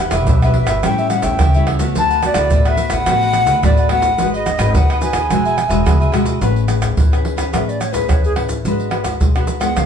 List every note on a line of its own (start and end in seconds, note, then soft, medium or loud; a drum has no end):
0.00 0.26 E3 medium
0.00 0.38 D4 medium
0.00 0.38 G4 medium
0.00 0.38 B4 medium
0.00 0.27 F#5 loud
0.00 muted cavaquinho stroke soft
0.11 0.29 E1 medium
0.11 0.27 G4 medium
0.11 0.26 B4 medium
0.11 0.26 E5 medium
0.11 pandeiro medium
0.11 tamborim medium
0.11 maracas medium
0.11 surdo soft
0.27 0.68 B1 loud
0.27 0.81 B2 medium
0.27 0.41 D4 medium
0.27 0.42 G4 medium
0.27 0.42 B4 medium
0.27 0.42 E5 medium
0.27 pandeiro medium
0.27 maracas medium
0.27 surdo medium
0.42 0.81 D4 medium
0.42 0.81 G4 medium
0.42 0.69 G4 medium
0.42 0.68 B4 medium
0.42 0.81 B4 medium
0.42 0.67 E5 medium
0.42 pandeiro soft
0.42 tamborim medium
0.42 maracas soft
0.54 pandeiro medium
0.58 0.83 E5 loud
0.67 0.81 G1 loud
0.67 0.82 G4 medium
0.67 0.83 B4 medium
0.67 0.82 E5 medium
0.67 pandeiro medium
0.67 tamborim medium
0.67 maracas medium
0.67 surdo soft
0.83 1.20 A1 medium
0.83 1.38 A2 medium
0.83 1.08 G3 soft
0.83 1.08 C#4 medium
0.83 1.08 E4 medium
0.83 0.97 G4 medium
0.83 0.97 A4 medium
0.83 0.97 C#5 medium
0.83 0.97 E5 medium
0.83 1.10 G5 medium
0.83 pandeiro medium
0.83 tamborim medium
0.83 maracas medium
0.83 surdo medium
0.98 1.09 A4 medium
0.98 1.09 C#5 medium
0.98 1.09 E5 medium
0.98 pandeiro soft
0.98 maracas soft
1.10 1.49 G3 medium
1.10 1.49 C#4 medium
1.10 1.49 E4 medium
1.10 1.26 F#5 medium
1.10 pandeiro medium
1.10 tamborim medium
1.10 maracas medium
1.22 1.37 A1 medium
1.22 1.38 A4 medium
1.22 1.37 C#5 medium
1.22 1.37 E5 medium
1.22 1.67 G5 medium
1.22 pandeiro medium
1.22 maracas medium
1.22 surdo soft
1.39 1.96 C#2 medium
1.39 1.93 E3 medium
1.39 1.53 G4 medium
1.39 1.53 A4 medium
1.39 1.53 C#5 medium
1.39 1.53 E5 medium
1.39 pandeiro medium
1.39 tamborim medium
1.39 maracas medium
1.39 surdo loud
1.54 1.78 G3 medium
1.54 1.78 C#4 medium
1.54 1.78 E4 medium
1.54 1.66 A4 medium
1.54 1.67 C#5 medium
1.54 1.67 E5 medium
1.54 pandeiro soft
1.54 maracas soft
1.66 1.94 G4 medium
1.66 1.94 A4 soft
1.66 1.95 C#5 medium
1.66 1.95 E5 medium
1.66 pandeiro medium
1.66 tamborim medium
1.79 2.18 A3 medium
1.79 2.18 B3 medium
1.79 2.18 F#4 medium
1.79 pandeiro medium
1.79 maracas medium
1.79 surdo soft
1.95 2.32 D2 loud
1.95 2.49 D3 medium
1.95 2.09 D4 soft
1.95 2.09 A4 medium
1.95 2.09 B4 medium
1.95 2.09 F#5 medium
1.95 2.23 A5 loud
1.95 pandeiro medium
1.95 maracas medium
1.95 surdo medium
2.10 2.21 A4 medium
2.10 2.22 B4 medium
2.10 2.22 F#5 medium
2.10 pandeiro soft
2.10 maracas soft
2.22 2.61 A3 medium
2.22 2.61 B3 soft
2.22 2.61 F#4 medium
2.22 2.70 D5 loud
2.22 muted cavaquinho stroke soft
2.22 pandeiro medium
2.22 tamborim medium
2.22 maracas medium
2.22 surdo soft
2.34 2.52 D2 loud
2.34 2.50 A4 medium
2.34 2.49 B4 medium
2.34 2.49 F#5 medium
2.34 pandeiro medium
2.34 tamborim loud
2.34 maracas medium
2.34 surdo soft
2.50 2.76 A1 loud
2.50 3.05 A2 medium
2.50 2.64 D4 medium
2.50 2.65 A4 medium
2.50 2.65 B4 medium
2.50 2.65 F#5 medium
2.50 pandeiro medium
2.50 maracas medium
2.50 surdo loud
2.65 3.03 A3 medium
2.65 3.03 B3 medium
2.65 3.03 F#4 medium
2.65 2.93 A4 medium
2.65 2.92 B4 medium
2.65 2.95 E5 loud
2.65 2.91 F#5 medium
2.65 pandeiro soft
2.65 tamborim medium
2.65 maracas soft
2.77 pandeiro medium
2.77 maracas medium
2.90 3.04 A1 medium
2.90 3.06 B4 medium
2.90 3.06 F#5 medium
2.90 3.63 F#5 loud
2.90 pandeiro medium
2.90 tamborim medium
2.90 maracas medium
2.90 surdo soft
2.94 3.07 A4 medium
3.06 3.48 A1 medium
3.06 3.60 D3 medium
3.06 3.58 A3 medium
3.06 3.58 B3 medium
3.06 3.21 D4 medium
3.06 3.58 F#4 medium
3.06 3.21 A4 medium
3.06 pandeiro medium
3.06 tamborim medium
3.06 maracas medium
3.06 surdo medium
3.10 3.22 B4 medium
3.10 3.22 F#5 medium
3.22 3.35 A4 medium
3.22 3.36 B4 medium
3.22 3.35 F#5 medium
3.22 pandeiro soft
3.22 maracas soft
3.33 muted cavaquinho stroke soft
3.33 pandeiro medium
3.33 tamborim medium
3.33 maracas medium
3.47 3.60 D2 medium
3.47 3.63 A4 soft
3.47 3.62 B4 medium
3.47 3.61 F#5 medium
3.47 pandeiro medium
3.47 maracas medium
3.47 surdo soft
3.62 4.19 A1 loud
3.62 4.16 A2 medium
3.62 3.86 A3 medium
3.62 3.86 B3 soft
3.62 3.76 D4 medium
3.62 3.87 F#4 medium
3.62 3.77 A4 medium
3.62 3.77 B4 medium
3.62 3.90 D5 medium
3.62 3.77 F#5 medium
3.62 pandeiro medium
3.62 tamborim medium
3.62 maracas medium
3.62 surdo loud
3.77 3.90 A4 medium
3.77 3.91 B4 medium
3.77 3.91 F#5 medium
3.77 pandeiro soft
3.77 maracas soft
3.89 4.08 A3 medium
3.89 4.08 B3 medium
3.89 4.18 D4 medium
3.89 4.09 F#4 medium
3.89 4.18 A4 medium
3.89 4.18 B4 medium
3.89 4.30 F#5 loud
3.89 4.19 F#5 medium
3.89 pandeiro medium
3.89 tamborim medium
4.02 pandeiro medium
4.02 maracas medium
4.02 surdo soft
4.18 4.55 G#1 loud
4.18 4.72 G#3 medium
4.18 4.45 D#4 medium
4.18 4.32 F#4 soft
4.18 4.46 F#4 medium
4.18 4.32 G#4 soft
4.18 4.32 B4 medium
4.18 4.46 B4 medium
4.18 4.33 D#5 medium
4.18 pandeiro medium
4.18 maracas medium
4.18 surdo medium
4.34 4.44 G#4 medium
4.34 4.44 B4 medium
4.34 4.45 D#5 medium
4.34 4.73 D#5 loud
4.34 pandeiro soft
4.34 maracas soft
4.45 muted cavaquinho stroke soft
4.45 pandeiro medium
4.45 tamborim medium
4.45 maracas medium
4.45 surdo soft
4.58 4.76 G#1 loud
4.58 4.97 D#4 medium
4.58 4.98 F#4 medium
4.58 4.73 G#4 medium
4.58 4.72 B4 medium
4.58 4.98 B4 medium
4.58 4.72 D#5 medium
4.58 pandeiro medium
4.58 tamborim medium
4.58 maracas medium
4.58 surdo soft
4.75 4.98 D#2 loud
4.75 5.29 D#3 medium
4.75 4.88 F#4 soft
4.75 4.88 G#4 medium
4.75 4.88 B4 medium
4.75 4.89 D#5 medium
4.75 5.01 F#5 medium
4.75 pandeiro medium
4.75 maracas medium
4.75 surdo loud
4.90 5.15 G#4 medium
4.90 5.15 B4 medium
4.90 5.13 D#5 medium
4.90 pandeiro soft
4.90 tamborim medium
4.90 maracas soft
5.01 5.18 D#4 medium
5.01 5.19 F#4 medium
5.01 5.19 B4 medium
5.01 6.10 G#5 loud
5.01 pandeiro medium
5.01 maracas medium
5.13 5.27 D#2 loud
5.13 5.29 G#4 medium
5.13 5.29 B4 medium
5.13 5.28 D#5 medium
5.13 pandeiro medium
5.13 tamborim medium
5.13 maracas medium
5.13 surdo soft
5.30 5.66 E1 medium
5.30 5.84 E3 soft
5.30 5.57 G#3 medium
5.30 5.44 D4 medium
5.30 5.57 D4 medium
5.30 5.57 F#4 medium
5.30 5.44 G#4 medium
5.30 5.44 B4 medium
5.30 5.44 E5 soft
5.30 pandeiro medium
5.30 tamborim medium
5.30 maracas medium
5.30 surdo medium
5.45 5.56 G#4 medium
5.45 5.57 B4 medium
5.45 5.56 E5 medium
5.45 pandeiro soft
5.45 maracas soft
5.57 muted cavaquinho stroke soft
5.57 pandeiro medium
5.57 tamborim medium
5.57 maracas medium
5.68 5.83 E1 medium
5.68 6.09 G#3 medium
5.68 6.09 D4 medium
5.68 6.09 F#4 medium
5.68 5.84 G#4 medium
5.68 5.84 B4 medium
5.68 5.83 E5 medium
5.68 pandeiro medium
5.68 maracas medium
5.68 surdo soft
5.85 6.12 C#2 medium
5.85 6.40 B2 soft
5.85 5.98 D4 medium
5.85 5.99 G#4 medium
5.85 5.99 B4 medium
5.85 5.99 E5 medium
5.85 pandeiro medium
5.85 tamborim medium
5.85 maracas medium
5.85 surdo loud
6.00 6.12 G#4 medium
6.00 6.12 B4 medium
6.00 6.13 E5 medium
6.00 pandeiro soft
6.00 maracas soft
6.12 6.38 B1 medium
6.12 6.37 G#3 medium
6.12 6.40 D4 soft
6.12 6.37 D4 medium
6.12 6.37 F#4 medium
6.12 6.41 G#4 medium
6.12 6.41 B4 medium
6.12 6.41 E5 medium
6.12 pandeiro medium
6.12 tamborim medium
6.12 maracas medium
6.26 pandeiro medium
6.26 maracas medium
6.26 surdo soft
6.41 6.89 A1 loud
6.41 6.95 A3 medium
6.41 6.66 C#4 medium
6.41 6.66 G#4 medium
6.41 6.66 B4 medium
6.41 pandeiro medium
6.41 maracas medium
6.41 surdo medium
6.56 pandeiro soft
6.56 maracas soft
6.68 6.95 C#4 medium
6.68 6.95 G#4 medium
6.68 6.96 B4 soft
6.68 pandeiro medium
6.68 tamborim medium
6.68 maracas medium
6.82 pandeiro medium
6.82 tamborim medium
6.82 maracas medium
6.82 surdo soft
6.97 7.21 A1 medium
6.97 7.51 E3 medium
6.97 pandeiro medium
6.97 maracas medium
6.97 surdo loud
7.12 7.35 C#4 medium
7.12 7.35 G#4 medium
7.12 7.36 B4 medium
7.12 pandeiro soft
7.12 tamborim medium
7.12 maracas soft
7.25 pandeiro medium
7.36 7.48 C#4 medium
7.36 7.48 G#4 medium
7.36 7.48 B4 medium
7.36 pandeiro medium
7.36 tamborim medium
7.36 maracas medium
7.36 surdo soft
7.52 8.01 A1 medium
7.52 8.06 A3 medium
7.52 7.80 C#4 medium
7.52 7.80 G#4 medium
7.52 7.80 B4 medium
7.52 7.71 E5 medium
7.52 pandeiro medium
7.52 tamborim medium
7.52 maracas medium
7.52 surdo medium
7.69 7.82 D5 medium
7.69 pandeiro soft
7.69 maracas soft
7.80 7.94 C#5 medium
7.80 pandeiro medium
7.80 tamborim medium
7.80 maracas medium
7.92 8.32 C#4 medium
7.92 8.32 G#4 medium
7.92 8.10 B4 medium
7.92 8.32 B4 medium
7.92 pandeiro medium
7.92 maracas medium
7.92 surdo soft
8.09 8.33 E2 medium
8.09 8.63 E3 medium
8.09 8.23 C#5 medium
8.09 pandeiro medium
8.09 tamborim medium
8.09 maracas medium
8.09 surdo loud
8.24 8.33 G#4 medium
8.24 pandeiro soft
8.24 maracas soft
8.36 8.60 A1 medium
8.36 8.55 C#4 medium
8.36 8.55 G#4 medium
8.36 8.55 B4 medium
8.36 pandeiro medium
8.36 tamborim medium
8.49 pandeiro medium
8.49 maracas medium
8.49 surdo soft
8.65 9.13 G#1 medium
8.65 9.19 G#3 medium
8.65 8.89 D4 medium
8.65 8.89 F#4 medium
8.65 8.90 B4 medium
8.65 pandeiro medium
8.65 maracas medium
8.65 surdo medium
8.80 pandeiro soft
8.80 maracas soft
8.90 9.18 D4 medium
8.90 9.18 F#4 medium
8.90 9.19 B4 medium
8.90 pandeiro medium
8.90 tamborim medium
9.04 pandeiro medium
9.04 tamborim medium
9.04 maracas medium
9.04 surdo soft
9.20 9.45 B1 medium
9.20 9.59 G#3 medium
9.20 pandeiro medium
9.20 maracas medium
9.20 surdo medium
9.36 9.59 D4 medium
9.36 9.59 F#4 medium
9.36 9.60 B4 medium
9.36 pandeiro soft
9.36 tamborim medium
9.36 maracas soft
9.47 pandeiro medium
9.47 maracas medium
9.60 9.86 G#3 medium
9.60 9.86 B3 medium
9.60 9.86 F4 medium
9.60 9.79 F#5 medium
9.60 pandeiro medium
9.60 tamborim medium
9.60 maracas medium
9.60 surdo soft
9.76 9.86 C#2 medium
9.76 9.86 C#3 medium
9.76 9.86 F5 medium
9.76 pandeiro medium
9.76 tamborim medium
9.76 maracas medium
9.76 surdo medium